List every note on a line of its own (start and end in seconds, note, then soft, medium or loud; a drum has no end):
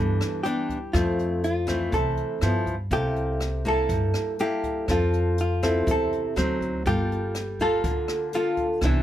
0.00 0.18 G2 medium
0.00 0.92 G2 medium
0.00 0.41 E3 medium
0.00 0.42 B3 medium
0.00 0.42 D4 medium
0.00 0.43 A4 medium
0.21 cross-stick medium
0.21 closed hi-hat soft
0.43 0.76 E3 medium
0.43 0.77 B3 medium
0.43 0.77 D4 medium
0.43 0.95 G4 medium
0.43 closed hi-hat soft
0.69 kick soft
0.69 closed hi-hat soft
0.93 1.89 F2 medium
0.93 1.91 F2 medium
0.93 1.43 A3 medium
0.93 1.44 C4 medium
0.93 1.43 F4 medium
0.93 kick medium
0.93 cross-stick medium
0.93 closed hi-hat soft
1.19 closed hi-hat soft
1.44 1.95 F4 medium
1.44 closed hi-hat soft
1.67 2.38 E3 medium
1.67 2.38 A3 medium
1.67 2.38 C4 medium
1.67 kick soft
1.67 cross-stick medium
1.67 closed hi-hat soft
1.92 2.15 C2 medium
1.92 2.39 C3 medium
1.92 2.63 A4 medium
1.92 kick medium
1.92 closed hi-hat soft
2.17 closed hi-hat soft
2.41 2.88 G2 medium
2.41 2.74 F3 medium
2.41 2.74 B3 medium
2.41 2.74 E4 medium
2.41 cross-stick medium
2.41 closed hi-hat soft
2.66 kick soft
2.66 closed hi-hat soft
2.91 3.86 C2 medium
2.91 3.88 C3 medium
2.91 3.40 A#3 medium
2.91 3.40 E4 medium
2.91 3.62 G4 medium
2.91 3.41 A4 medium
2.91 kick medium
2.91 closed hi-hat soft
3.16 closed hi-hat soft
3.40 cross-stick medium
3.40 closed hi-hat soft
3.65 4.35 A#3 medium
3.65 4.36 E4 medium
3.65 4.36 A4 medium
3.65 4.40 A4 medium
3.65 kick soft
3.65 closed hi-hat soft
3.89 4.12 G2 medium
3.89 4.87 G2 medium
3.89 kick medium
3.89 closed hi-hat soft
4.14 cross-stick medium
4.14 closed hi-hat soft
4.39 4.85 A#3 medium
4.39 4.85 E4 medium
4.39 4.86 G4 medium
4.39 4.85 A4 medium
4.39 closed hi-hat soft
4.64 kick soft
4.64 closed hi-hat soft
4.88 5.83 F2 medium
4.88 5.85 F3 medium
4.88 5.38 C4 medium
4.88 5.36 F4 medium
4.88 5.38 A4 medium
4.88 kick medium
4.88 cross-stick medium
4.88 closed hi-hat soft
5.13 closed hi-hat soft
5.38 5.90 F4 medium
5.38 closed hi-hat soft
5.63 6.33 C4 medium
5.63 6.33 E4 medium
5.63 6.33 A4 medium
5.63 kick soft
5.63 cross-stick medium
5.63 closed hi-hat soft
5.87 6.10 E2 medium
5.87 6.34 C3 medium
5.87 kick medium
5.87 closed hi-hat soft
5.91 6.59 A4 medium
6.13 closed hi-hat soft
6.36 6.82 D2 medium
6.36 6.82 F#3 medium
6.36 6.82 C4 medium
6.36 6.82 D#4 medium
6.36 cross-stick medium
6.36 closed hi-hat soft
6.61 kick soft
6.61 closed hi-hat soft
6.86 7.80 G1 medium
6.86 7.82 G3 medium
6.86 7.35 A#3 medium
6.86 7.35 F4 medium
6.86 7.62 G4 medium
6.86 7.35 A4 medium
6.86 kick medium
6.86 closed hi-hat soft
7.12 closed hi-hat soft
7.35 cross-stick medium
7.35 closed hi-hat soft
7.59 8.30 A#3 medium
7.59 8.30 F4 medium
7.59 8.31 A4 medium
7.59 kick soft
7.59 closed hi-hat soft
7.84 8.07 D2 medium
7.84 8.80 D3 medium
7.84 kick medium
7.84 closed hi-hat soft
8.08 cross-stick medium
8.08 closed hi-hat soft
8.33 8.66 A#3 medium
8.33 8.66 F4 medium
8.33 8.85 F4 medium
8.33 8.66 A4 medium
8.33 closed hi-hat soft
8.57 kick soft
8.57 closed hi-hat soft
8.81 9.03 C2 medium
8.81 9.03 C3 medium
8.81 9.03 E3 soft
8.81 9.03 B3 medium
8.81 9.03 D4 medium
8.81 9.03 E4 medium
8.81 kick medium
8.81 cross-stick medium
8.81 closed hi-hat soft